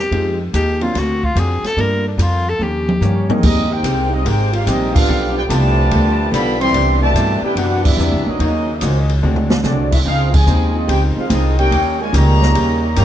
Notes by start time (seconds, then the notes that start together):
0.00 G4
0.11 F2 F3 G#3 C4 D#4 G4, ride
0.53 D#2 F3 G#3 D#4 G4, hi-hat pedal, ride
0.81 F#3 A#3 C4 D4 F4, ride
0.94 D2 D3 A#3 C4 F#4, snare, ride
0.98 F#4
1.23 F4, kick
1.35 F2 D3 A#3 C4 F#4 G#4, hi-hat pedal, ride
1.63 A4, muted upright bass stroke, snare, ride
1.76 G2 G3 A3 A#3 D4 F4 A4, ride
1.80 A#4
2.08 D4
2.18 F2 G3 A#3 F4 A4, hi-hat pedal, ride
2.22 F4
2.49 A4
2.59 D#2 D#3 A#3 C#4 G4, high tom
2.63 G4
2.89 high tom
3.01 G2 D#3 G3 A#3 C#4 D#4 G4 C#5, floor tom, hi-hat pedal
3.27 G3 G#3 A#3 C4 D#4 A#4, floor tom
3.31 C#4 G4 A#4 D#5
3.41 D#2 C3 G3 G#3 A#3 C4 D#4 G4 A#4 D#5, kick, crash
3.68 C4 D#4 G4 G5
3.72 D#4 A#4 C5
3.83 C2 G#3 C4 G4 A#4, hi-hat pedal, ride
4.10 G3 C4 D#4 G4 A#4 D#5
4.24 G#1 G#3 C4 D#4 G4 A#4 C5 G5, ride
4.52 C#4 F4 G4 A#4 F5, ride
4.64 A#1 G3 G#3 C4 D#4 G4 A#4, hi-hat pedal, ride
4.68 A#4 D#5
4.92 B3 D4 F4 A4 B4 F5, kick, crash
5.08 B1 F3 G3 A3 B3 F4 A4
5.31 B3 D4 G4
5.37 F4 B4 D5 G5
5.46 D3 F3 G3 A3 F4 B4 D5 A5
5.50 C2 B3 F4 A4, hi-hat pedal, ride
5.91 D2 G3 B3 F4 A4, ride
6.30 B1 D3 F3 G3 B3 F4 A4 D5 F5 B5, hi-hat pedal, ride
6.59 E3 G3 C4 G4 D5 E5 C6, ride
6.73 C2 B2 C3 E3 B3 D4, ride
6.99 B2 E3 A3 G4 D5 E5 A5
7.14 G2 C3 E3 B3 D4, hi-hat pedal, ride
7.41 B3 E4 G4 B4 D5 G5, muted upright bass stroke
7.55 F#2 C3 E3 B3 D4 F#4 G4 B4 F#5, ride
7.83 G3 B3 D4 E4 G4 B4 E5, kick, crash
7.97 E2 C3 E3 B3, hi-hat pedal
8.01 D4
8.12 C2
8.25 B1 F#3 A#3 C#4 D#4
8.29 F#4 A#4 D#5
8.39 D#2 C#3 D#3 F#3 A#3 C#4 D#4 F#4, ride
8.74 E5
8.78 D#5, hi-hat pedal, ride
8.82 C#2 D#3 A#3 C#4 F#4 C5
8.99 D#5
9.09 ride
9.22 D2 C3 D3 G#3 C4 D4 F#4, mid tom
9.36 mid tom
9.50 snare
9.63 C2 D3 F#3 G#3 A3 C4 D4 F#4 A4 D5, snare, hi-hat pedal
9.91 C4 E4 F#4 A4 E5, kick, crash
10.04 C#2 C#3 D#3 F3 G#3 C4 D#4 F4 G#4 C5 F5
10.32 C3 F3 G#3 F4 C5 D#5 G#5, kick, crash
10.46 D#2 C#3 F3 C4 D#4, hi-hat pedal
10.75 G#3 C4 D#4 F4 G#4 D#5
10.88 C#2 C#3 F3 C4 D#4 G4 G#4 C5 G5, ride
11.16 G#3 C4 D#4 F4 G#4 C5 F5, muted upright bass stroke
11.28 C2 C#3 F3 G#3 C4 D#4 F4 G#4 D#5, hi-hat pedal, ride
11.58 A#3 C#4 D#4 G4 A#4 C#5 G5, ride
11.71 D#2 D#3 G3 A#3 C#4 G4 A#4, ride
12.00 G#3 F4 A#4 C#5 G#5
12.13 C#2 C#3 D#3 G3 A#3 C#4 G4 A#4 C#5 D#5 A#5, hi-hat pedal, ride
12.42 snare
12.54 D#2 D#3 C#4 G4 A#4, ride
12.96 G2 C#3 D#3 G3 A#3 C#4 G4 A#4 C#5 D#5 A#5, hi-hat pedal, ride